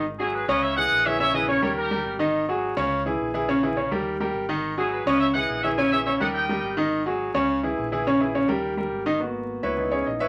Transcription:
<<
  \new Staff \with { instrumentName = "Trumpet section" } { \time 4/4 \key gis \minor \tempo 4 = 210 r8 <e' gis'>8 <gis' b'>8 <b' dis''>8 <cis'' e''>8 <dis'' fis''>4 <cis'' e''>8 | <cis'' e''>8 <b' dis''>8 <ais' cis''>8 <ais' cis''>8 <g' ais'>4. r8 | r1 | r1 |
r8 <e' gis'>8 <gis' b'>8 <b' dis''>8 <cis'' e''>8 <dis'' fis''>4 <cis'' e''>8 | <e'' gis''>8 <cis'' e''>8 <cis'' e''>8 <dis'' fis''>8 <dis'' g''>4. r8 | r1 | r1 |
r1 | }
  \new Staff \with { instrumentName = "Grand piano" } { \time 4/4 \key gis \minor r8 <fis fis' gis'>4 <cis cis' cis''>4 <e e' gis'>4 <e e' gis'>8 | <cis cis' cis''>8 <e e' gis'>8 <cis cis' cis''>8 <g g' ais'>4 <g g' ais'>4 <dis dis' dis''>8~ | <dis dis' dis''>8 <fis fis' gis'>4 <cis cis' cis''>4 <e e' gis'>4 <e e' gis'>8 | <cis cis' cis''>8 <e e' gis'>8 <cis cis' cis''>8 <g g' ais'>4 <g g' ais'>4 <dis dis' dis''>8~ |
<dis dis' dis''>8 <fis fis' gis'>4 <cis cis' cis''>4 <e e' gis'>4 <e e' gis'>8 | <cis cis' cis''>8 <e e' gis'>8 <cis cis' cis''>8 <g g' ais'>4 <g g' ais'>4 <dis dis' dis''>8~ | <dis dis' dis''>8 <fis fis' gis'>4 <cis cis' cis''>4 <e e' gis'>4 <e e' gis'>8 | <cis cis' cis''>8 <e e' gis'>8 <cis cis' cis''>8 <g g' ais'>4 <g g' ais'>4 <dis dis' dis''>8 |
r4. <e' b' cis'' e''>4 <cis' e' gis' cis''>8 <dis' dis''>8 <e' b' cis'' e''>8 | }
  \new Staff \with { instrumentName = "Grand piano" } { \time 4/4 \key gis \minor r1 | r1 | r1 | r1 |
r1 | r1 | r1 | r1 |
<ais b fis'>2 <e b dis'>2 | }
  \new Staff \with { instrumentName = "Fingered electric bass" } { \clef bass \time 4/4 \key gis \minor gis,,4. cis,4. ais,,4~ | ais,,4. dis,4. gis,,4~ | gis,,4. cis,4. ais,,4~ | ais,,4. dis,4. gis,,4~ |
gis,,4. cis,4. ais,,4~ | ais,,4. dis,4. gis,,4~ | gis,,4. cis,4. ais,,4~ | ais,,4. dis,4. gis,,4~ |
gis,,4. cis,4. ais,,4 | }
>>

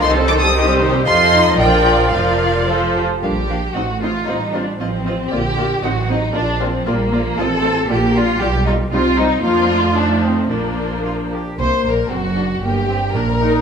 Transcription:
<<
  \new Staff \with { instrumentName = "Violin section" } { \time 2/4 \key bes \major \tempo 4 = 116 c'''8 d'''16 ees'''8 r8. | c'''4 g''4 | f''4. r8 | f''8 f''8 ees''8 ees''8 |
ees''8 ees''8 ees''8 ees''8 | d''8 d''8 ees''8 ees''8 | d''8 d''8 d''8 d''8 | ees''8 ees''8 d''8 d''8 |
d''8 d''8 c''8 c''8 | bes'4 a'4 | bes'4. r8 | c''8 bes'8 fis'4 |
g'4 bes'4 | }
  \new Staff \with { instrumentName = "Violin section" } { \time 2/4 \key bes \major <c'' ees''>16 <g' c''>16 <c'' ees''>16 <g' c''>16 <c'' ees''>16 <g' c''>16 <c'' ees''>16 <g' c''>16 | <a' ees''>4 <bes' d''>4 | <bes' d''>4 <a' c''>8 r8 | g'4 fis'8 f'8 |
ees'8 d'8 c'4 | g'4 fis'8 ees'8 | d'8 c'8 bes4 | a'4 g'8 f'8 |
g'8 ees'8 f'8 ees'8 | f'4 d'8 c'8 | bes4. r8 | c''8 bes'8 fis'4 |
g'4 bes'4 | }
  \new Staff \with { instrumentName = "Viola section" } { \time 2/4 \key bes \major <ees ees'>16 <g c'>16 <ees ees'>16 <g c'>16 <ees ees'>16 <g c'>16 <ees ees'>16 <g c'>16 | <f f'>4 <f f'>4 | <f f'>4 <f f'>8 r8 | <bes d'>8 <bes d'>8 <c' ees'>8 <c' ees'>8 |
<c' f'>8 <c' f'>8 <c' f'>8 <c' f'>8 | <bes f'>8 <bes f'>8 <c' ees'>8 <c' ees'>8 | <bes f'>8 <bes f'>8 <bes f'>8 <bes f'>8 | <c' f'>8 <c' f'>8 <bes f'>8 <bes f'>8 |
<g f'>8 <g f'>8 <g ees'>8 <g ees'>8 | <f d'>4 <f ees'>4 | <f d'>4. r8 | bes4 c'8 d'8 |
bes8 c'8 d'8 ees'8 | }
  \new Staff \with { instrumentName = "Cello section" } { \time 2/4 \key bes \major a'4 g'4 | f'8 ees'8 d'4 | f'4 a'8 g'8 | g8 f8 a4 |
g4 f4 | d4 fis4 | f4 g8 f8 | c'4 bes4 |
g4 c'4 | bes8 a4. | d'4 f'8 g'8 | c8 bes,8 fis,4 |
g,4 bes,4 | }
  \new Staff \with { instrumentName = "Double bass section" } { \clef bass \time 2/4 \key bes \major c,2 | f,4 bes,,4 | f,,4. r8 | bes,,4 a,,4 |
a,,4 a,,4 | bes,,4 a,,4 | bes,,4 bes,,4 | a,,4 bes,,4 |
b,,4 c,4 | f,2 | bes,,4. r8 | c,8 bes,,8 fis,,4 |
g,,4 bes,,4 | }
>>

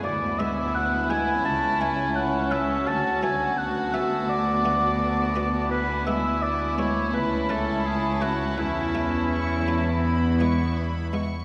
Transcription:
<<
  \new Staff \with { instrumentName = "Violin section" } { \time 4/4 \key a \major \tempo 4 = 84 gis''2 a''2~ | a''1 | gis''2 a''2~ | a''4 cis'''8 a''8 b''8 cis'''8 b''8 cis'''8 | }
  \new Staff \with { instrumentName = "Oboe" } { \time 4/4 \key a \major d''8 e''8 fis''8 gis''8 a''8 gis''8 fis''8 e''8 | a''8 gis''8 fis''8 e''8 d''2 | b'8 e''8 d''8 cis''8 b'8 a'8 gis'8 fis'8 | e'2.~ e'8 r8 | }
  \new Staff \with { instrumentName = "Violin section" } { \time 4/4 \key a \major e'1 | fis'1 | e'1~ | e'2.~ e'8 r8 | }
  \new Staff \with { instrumentName = "Harpsichord" } { \time 4/4 \key a \major << { r8 <gis b e'>4 <gis b e'>8 r8 <a cis' e'>4 <a cis' e'>8 | r8 <a b fis'>4 <a b fis'>8 r8 <a b fis'>4 <a b fis'>8 | r8 <gis b e'>4 <gis b e'>8 r8 <a cis' e'>4 <a cis' e'>8 | r8 <a cis' e'>4 <a cis' e'>8 r8 <gis b e'>4 <gis b e'>8 | } \\ { d,2 cis,2 | d,1~ | d,2 cis,2 | e,2.~ e,8 r8 | } >> }
  \new Staff \with { instrumentName = "Viola section" } { \time 4/4 \key a \major b2 cis'2~ | cis'4 b2.~ | b2 cis'2~ | cis'2 b4. r8 | }
  \new Staff \with { instrumentName = "Cello section" } { \clef bass \time 4/4 \key a \major d,2 cis,2 | d,1~ | d,2 cis,2 | e,2.~ e,8 r8 | }
>>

